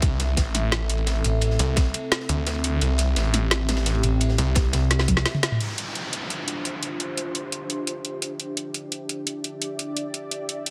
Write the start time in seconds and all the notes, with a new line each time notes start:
Already playing: E5
0.02 C2 C4 A4, kick, closed hi-hat, ride
0.20 snare, closed hi-hat, ride
0.37 A1, kick, snare, closed hi-hat, ride
0.55 snare, closed hi-hat, ride
0.72 snare, closed hi-hat, ride
0.90 closed hi-hat, ride
0.98 ride
1.07 snare, closed hi-hat, ride
1.15 ride
1.24 A1, closed hi-hat, ride
1.41 closed hi-hat, ride
1.50 snare
1.59 C2, snare, closed hi-hat, ride
1.76 kick, snare, closed hi-hat, ride
1.94 closed hi-hat, ride
2.12 snare, closed hi-hat, ride
2.20 snare
2.29 D2, closed hi-hat, ride
2.47 snare, closed hi-hat, ride
2.55 ride
2.64 closed hi-hat, ride
2.81 C2 G4, closed hi-hat, ride
2.98 snare, closed hi-hat, ride
3.16 A1, snare, closed hi-hat, ride
3.34 snare, closed hi-hat, ride
3.51 snare, closed hi-hat, ride
3.69 snare, closed hi-hat, ride
3.77 snare, ride
3.86 snare, closed hi-hat, ride
3.95 ride
4.03 A1, closed hi-hat, ride
4.21 closed hi-hat, ride
4.29 snare
4.38 C2, snare, closed hi-hat, ride
4.55 kick, snare, closed hi-hat, ride
4.73 C2, snare, closed hi-hat, ride
4.90 snare, closed hi-hat, ride
4.99 snare, ride
5.08 kick, closed hi-hat, high tom
5.17 snare, ride
5.25 snare, closed hi-hat, ride
5.34 mid tom, ride
5.43 snare, closed hi-hat, ride
5.52 mid tom
5.60 D4 F4 E5, closed hi-hat, downlifter
5.75 G4, closed hi-hat
5.79 C5
5.90 F4
5.95 closed hi-hat
6.13 closed hi-hat
6.30 closed hi-hat
6.48 closed hi-hat
6.65 closed hi-hat
6.83 closed hi-hat
7.00 closed hi-hat
7.17 closed hi-hat
7.35 closed hi-hat
7.52 closed hi-hat
7.70 closed hi-hat
7.87 closed hi-hat
8.05 closed hi-hat
8.22 closed hi-hat
8.40 closed hi-hat
8.53 E5
8.57 closed hi-hat
8.74 closed hi-hat
8.92 closed hi-hat
9.03 D5
9.09 closed hi-hat
9.27 closed hi-hat
9.44 closed hi-hat
9.62 closed hi-hat
9.79 closed hi-hat
9.97 closed hi-hat
10.14 closed hi-hat
10.31 closed hi-hat
10.49 closed hi-hat
10.66 closed hi-hat